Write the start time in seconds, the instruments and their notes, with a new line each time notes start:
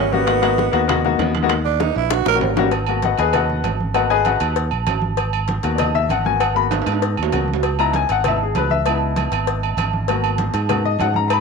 Already playing: fingered electric bass G#1, tenor saxophone C#4
0.12 grand piano G3 A#3 C#4 F#4, tenor saxophone B3, high bongo, high conga
0.26 grand piano A#3 B3 D#4 F#4, high bongo, high conga, high timbale
0.42 grand piano A#3 B3 D#4 F#4, high bongo, high conga, high timbale
0.58 high bongo, high conga
0.72 fingered electric bass D#2, grand piano A#3 B3 D#4 F#4, high conga, high timbale
0.88 grand piano A#3 B3 D#4 F#4, high bongo, high conga, low conga, high timbale
1.04 grand piano A#3 B3 D#4 F#4, high bongo, high conga, low conga
1.19 fingered electric bass D#2, high bongo, low bongo, high conga, high timbale, low timbale
1.35 high bongo, high conga, high timbale
1.43 grand piano A#3 B3 D#4 F#4
1.49 high bongo, high conga, high timbale
1.65 tenor saxophone D4, high bongo, high conga
1.80 tenor saxophone D#4, high bongo, high conga, high timbale
1.95 fingered electric bass A#1, tenor saxophone E4, high conga, high timbale
2.10 tenor saxophone F#4, high bongo, high conga, high timbale
2.26 fingered electric bass A#1, tenor saxophone A#4, low bongo, high conga, low timbale
2.34 grand piano G3 A#3 C#4 F#4
2.41 fingered electric bass G#1, high conga, low timbale
2.56 grand piano G3 A#3 C#4 F#4, low bongo, high conga, low timbale
2.71 cowbell, high conga, low agogo
2.86 grand piano A#3 B3 F#4, high conga, low agogo
3.02 grand piano F#4 B4 D#5 F#5, cowbell, high conga
3.18 fingered electric bass D#2, grand piano G#4 B4 D#5 G#5, cowbell, high conga, low agogo
3.33 grand piano F#4 B4 D#5 F#5, cowbell, high conga, low conga, low agogo
3.50 high conga, low conga
3.64 fingered electric bass G#1, cowbell, high conga, low timbale, low agogo
3.80 high conga
3.94 grand piano A#3 B3 F#4 B4 D#5 F#5, cowbell, low agogo
4.10 grand piano G#4 B4 D#5 G#5, high conga
4.25 grand piano F#4 B4 D#5 F#5, cowbell, high conga, low agogo
4.40 fingered electric bass D#2, cowbell, low agogo
4.56 cowbell, high conga
4.71 fingered electric bass A#1, high conga, low agogo
4.87 fingered electric bass G#1, cowbell, high conga, low timbale, low agogo
5.02 high conga
5.17 cowbell, high conga, low agogo
5.33 high conga, low agogo
5.48 cowbell, high conga
5.63 fingered electric bass D#2, grand piano A#3 B3 F#4, cowbell, high conga, low agogo
5.75 grand piano D5, cowbell
5.79 grand piano D#5, high conga, low conga, low agogo
5.95 grand piano E5, high conga, low conga
6.09 fingered electric bass G#1, grand piano F#5, cowbell, high conga, low agogo
6.25 grand piano A#3 B3 F#4 G#5, high conga
6.40 grand piano F#5, cowbell, high conga, low agogo
6.55 grand piano A#3 B3 F#4 B5, high conga
6.71 cowbell, high conga, high timbale, low agogo
6.82 high timbale
6.86 fingered electric bass G#2, cowbell, high conga, low agogo
6.92 high timbale
7.02 cowbell, high conga
7.17 fingered electric bass D#2, high conga, low agogo
7.23 low timbale
7.32 fingered electric bass C#2, grand piano A#3 B3 F#4, cowbell, high conga, low timbale, low agogo
7.48 high conga
7.53 low timbale
7.63 cowbell, high conga, low agogo
7.79 grand piano B3 D#4 E4 A#5, high conga, low agogo
7.93 grand piano G#5, cowbell, high conga
8.09 fingered electric bass G#1, grand piano F#5, cowbell, high conga, low agogo
8.24 grand piano B3 D#4 E4 E5, cowbell, high conga, low conga, low agogo
8.39 grand piano G#4, high conga
8.55 fingered electric bass C#2, grand piano B4, cowbell, high conga, low timbale, low agogo
8.70 grand piano E5, high conga
8.85 grand piano B3 D#4 E4, cowbell, high conga, low agogo
9.00 high conga
9.16 cowbell, high conga, low agogo
9.31 fingered electric bass G#1, cowbell, high conga, low agogo
9.46 cowbell, high conga
9.62 high conga, low agogo
9.77 fingered electric bass G#1, cowbell, high conga, low agogo
9.93 high conga
10.08 grand piano A#3 B3 F#4, cowbell, high conga, low agogo
10.23 high conga, low agogo
10.38 cowbell, high conga
10.53 fingered electric bass G#2, cowbell, high conga, low agogo
10.69 grand piano A#3 B3 F#4, cowbell, high conga, low conga, low agogo
10.84 grand piano D#5, high conga
10.99 fingered electric bass G#2, grand piano F#5, cowbell, high conga, low timbale, low agogo
11.14 grand piano A#5, high conga
11.28 grand piano A#5, cowbell, low agogo
11.33 grand piano B5